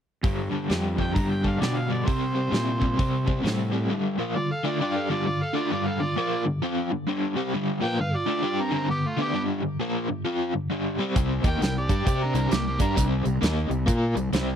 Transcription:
0.24 G2 D3 G3, kick, open hi-hat
0.51 G2 D3 G3, muted fingered electric bass stroke
0.69 F2 G2 D3 G3, snare, open hi-hat
0.97 G2 D3 G3 G5, kick
1.15 G2 D3 G3 A#5, kick, open hi-hat
1.30 G5
1.43 G2 D3 G3, kick
1.47 F5
1.60 G2 B2 D3 G3 D5, snare, open hi-hat
1.77 F5
1.88 G2 D3 G3 D5
2.05 C3 G3 C4 C5, kick, open hi-hat
2.35 C3 G3 C4
2.51 A#2 C3 G3 C4, snare, open hi-hat
2.80 C3 G3 C4, kick
2.98 C3 G3 C4, kick, open hi-hat
3.26 C3 G3 C4, kick
3.43 A2 C3 G3 C4, snare, open hi-hat
3.72 C3 G3 C4
3.89 G2 D3 G3
4.18 A#2 F3 A#3
4.35 G2 D3 F4 D5
4.51 A4 F5
4.63 D3 A3 D4 F4 D5
4.81 G3 D4 F4 G4 D5
4.94 A4 F5
5.09 G2 D3 G3 F4 D5
5.26 G2 D3 F4 D5
5.42 A4 F5
5.54 D3 A3 D4 F4 D5
5.71 G2 D3 G3 F4 D5
5.86 A4 F5
6.00 G2 D3 F4 D5
6.16 A#2 F3 A#3 F4 D5
6.45 G2 D3
6.62 F3 C4 F4
6.91 G2 D3
7.07 G2 D3 G3
7.36 C3 G3 C4
7.53 G2 D3 G3
7.81 A#2 F3 A#3 G5
7.85 B4
7.99 G2 D3 B4 F5
8.16 F4 D5
8.26 D3 A3 D4
8.43 G3 D4 G4
8.60 C4 A#4
8.70 G2 D3 G3
8.75 C4 A#4
8.89 G2 D3 B3 G4
9.06 A3 F4
9.17 D3 A3 B3 D4
9.22 G4
9.34 G2 D3 G3
9.63 G2 D3
9.80 A#2 F3 A#3
10.09 G2 D3
10.25 F3 C4 F4
10.53 G2 D3
10.70 G2 D3 G3
10.99 C3 G3 C4
11.16 C2 C3 G3 C4, kick, closed hi-hat
11.44 D#2 D#3 A#3 D#4 G5, kick, closed hi-hat
11.48 A#4
11.60 C2 C3 G3 A#4 G5, snare, closed hi-hat
11.78 G4 D5
11.89 G2 G3 D4 G4, kick, closed hi-hat
12.06 C3 C4 G4 C5, kick, closed hi-hat
12.23 D4 A#4
12.34 C2 C3 G3 C4 D4, closed hi-hat
12.38 A#4
12.51 C2 C3 G3 A#3 G4, snare, closed hi-hat
12.67 A#3 G4
12.79 G2 G3 D4 G4 A#4, kick, closed hi-hat
12.96 C2 C3 G3 C4, kick, closed hi-hat
13.24 C2 C3 G3, closed hi-hat
13.41 D#2 D#3 A#3 D#4, snare, closed hi-hat
13.69 C2 C3 G3, closed hi-hat
13.86 A#2 A#3 F4 A#4, kick, closed hi-hat
14.15 C2 C3 G3, closed hi-hat
14.33 C2 C3 G3 C4, snare, closed hi-hat

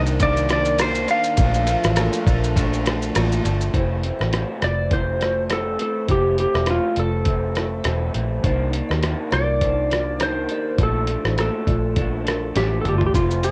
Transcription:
Already playing: C2 D#3 A#3 D4 A#4 C5
0.06 shaker
0.20 C3 D#3 A#3 D4 D5, kick, ride, shaker
0.37 shaker
0.49 D#3 A#3 D4 D5, cross-stick, ride, shaker
0.65 shaker
0.79 C3 D#3 A#3 D4 C5, cross-stick, ride, shaker
0.95 shaker
1.08 D#3 A#3 D4 F5, ride, shaker
1.24 shaker
1.37 A#1 A#2 F3 A3 D4 A4 A#4, kick, ride, shaker
1.54 shaker
1.67 F3 A3 D4, ride, shaker
1.84 A1, cross-stick, shaker
1.96 A#2 F3 A3 D4, cross-stick, ride, shaker
2.13 shaker
2.26 A#1 F3 A3 D4, kick, ride, shaker
2.44 shaker
2.56 A#2 F3 A3 D4, kick, ride, shaker
2.73 shaker
2.85 F3 A3 D4, cross-stick, ride, shaker
3.02 shaker
3.14 A1 A#2 F3 A3 D4, cross-stick, ride, shaker
3.32 shaker
3.43 G1 F3 A3 D4, ride, shaker
3.61 shaker
3.73 F1 F2 C3 E3 A3 C4 E4 C5, kick, closed hi-hat
4.03 E3 A3 C4, closed hi-hat
4.19 A1 G4 E5, cross-stick
4.31 F2 C3 E3 A3 C4, cross-stick, closed hi-hat
4.62 F1 E3 A3 C4 F4 D5, cross-stick, closed hi-hat
4.90 C3 E3 A3 C4 E4 C5, kick, closed hi-hat
5.19 E3 A3 C4 F4 D5, cross-stick, closed hi-hat
5.49 F2 C3 E3 A3 C4 E4 C5, cross-stick, closed hi-hat
5.53 A4
5.78 E3 A3 C4 A4, closed hi-hat
6.08 F1 F2 C3 E3 A3 C4 E4 G4 C5, kick, closed hi-hat
6.37 E3 A3 C4 G4, closed hi-hat
6.54 E1 G4 E5, cross-stick
6.66 F2 C3 E3 A3 C4, cross-stick, closed hi-hat
6.71 F4
6.96 F1 E3 A3 C4 F4 A4 D5, closed hi-hat
7.25 C3 E3 A3 C4, kick, closed hi-hat
7.55 E3 A3 C4 E4 C5, cross-stick, closed hi-hat
7.84 E1 F2 C3 E3 A3 C4, cross-stick, closed hi-hat
8.14 A#1 E3 A3 C4, closed hi-hat
8.43 C2 C3 D#3 A#3 D4 D#4 C5, kick, closed hi-hat
8.73 D#3 A#3 D4, closed hi-hat
8.89 D#2 G4 D#5, cross-stick
9.02 C3 D#3 A#3 D4, cross-stick, closed hi-hat
9.31 C2 A#3 D4 F4 D5, cross-stick, closed hi-hat
9.61 C3 D#3 A#3 D4 D#4 C5, kick, closed hi-hat
9.90 D#3 A#3 D4 F4 D5, cross-stick, closed hi-hat
10.19 C3 D#3 A#3 D4 D#4 C5, cross-stick, closed hi-hat
10.49 D#3 A#3 D4 G4 D#5, closed hi-hat
10.78 A#1 A#2 F3 A3 D4 F4 D5, kick, closed hi-hat
10.83 A4
11.07 F3 A3 D4, closed hi-hat
11.25 A1 E4 C5, cross-stick
11.37 A#2 F3 A3 D4 A4, cross-stick, closed hi-hat
11.66 A#1 F3 A3 D4 F4 D5, kick, closed hi-hat
11.96 A#2 F3 A3 D4, kick, closed hi-hat
12.25 F3 A3 D4 A#4, cross-stick, closed hi-hat
12.55 A1 A#2 F3 A3 D4 G4, snare, closed hi-hat
12.82 G1 D4 A4, closed hi-hat, mid tom
12.86 F3 A3 G4
12.98 F4, floor tom
13.07 G4
13.14 F1 F2 C3 E3 A3 C4 F4, kick, closed hi-hat, shaker
13.31 shaker
13.43 E3 A3 C4 A4, closed hi-hat, shaker

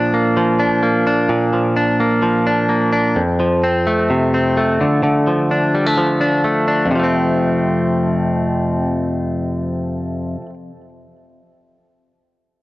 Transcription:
Already playing: A#2 F3 D4
0.14 A#3
0.37 F3
0.60 D4
0.83 A#3
1.07 D4
1.29 A#2
1.53 F3
1.76 D4
2.00 A#3
2.22 F3
2.47 D4
2.69 A#3
2.93 D4
3.16 F2
3.40 F3
3.64 C4
3.87 A3
4.10 C3
4.34 C4
4.57 A3
4.81 D3
5.03 D3
5.27 F3
5.51 D4
5.75 G3
5.86 A3
5.97 F3
6.21 D4
6.44 A3
6.68 D4
6.86 F2
6.91 C3
6.95 F3 A3
7.04 C4

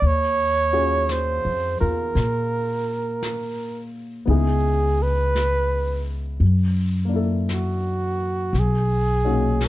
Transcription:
0.02 D#2, brush sweep
0.06 C#5
0.73 C#4 F4 F#4 G#4
1.09 C5, brush sweep, snare, hi-hat pedal
1.45 F2
1.80 E2 F4 A#4
2.15 A#2, brush sweep, snare
3.23 brush sweep, snare, hi-hat pedal
4.26 C#2 B3 D#4 E4 G#4, brush sweep
4.31 G#4
5.02 B4
5.35 brush sweep, snare, hi-hat pedal
6.40 F#2, brush sweep
7.05 A#3 D4
7.13 E4 A4
7.49 brush sweep, snare, hi-hat pedal
7.54 F#4
8.53 B1, brush sweep, snare
8.59 G#4
9.24 A#2 C#4 D#4 F#4
9.61 brush sweep, snare, hi-hat pedal

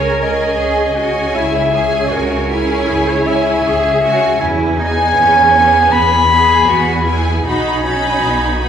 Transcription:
Already playing: C#2 C#4 G#4 A#4 C#5 G#5
0.22 C#4 G#4 D#5 G#5
0.59 C#2 G#4
0.96 C#4 F#4 G#4 G#5
1.35 C#2 E4 E5
1.73 C#4 G#4 G#5
2.12 C#2 F#4 A#4
2.50 C#4 E4 G#4 G#5
2.87 C#2 G#4
3.08 C#5
3.26 C#4 G#4 E5 G#5
3.65 C#2 G#4
4.03 C#4 F#4 G#4 G#5
4.41 E2 E4 G#5
4.79 B3 D#4 G#4 G#5
5.17 E2 C#4
5.56 B3 G#4 G#5
5.92 E2 B3 B5
6.30 B3 G#4 G#5
6.68 E2 F#4
7.06 B3 E4 G#4 G#5
7.43 B1 D#4 F#4 G#5 B5
7.83 C#4 D#4 F#4 B5
8.22 B1 B3
8.60 D#4 F#4 B5

